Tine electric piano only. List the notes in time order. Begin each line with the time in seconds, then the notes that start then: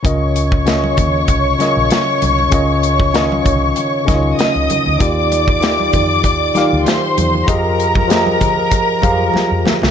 0.03 C#3 C#4 F4 A#4 D#5
0.65 C#3 C#4 F4 A#4 D#5
1.58 C#3 C#4 F4 A#4 D#5
2.51 C#3 C#4 F4 A#4 D#5
3.13 D#3 C#4 F4 A#4 D#5
4.05 C#3 C#4 D#4 A#4 D#5
4.14 F4
4.98 D#3 D#4 F4 G4 D5
5.61 D#3 D#4 F4 G4 D5
6.55 D#3 D#4 F4 G4 F5
7.46 F3 F4 G4 G#4 A#4 D#5
8.08 F3 F4 G4 G#4 A#4 D#5
9.02 F3 F4 G4 G#4 A#4 F5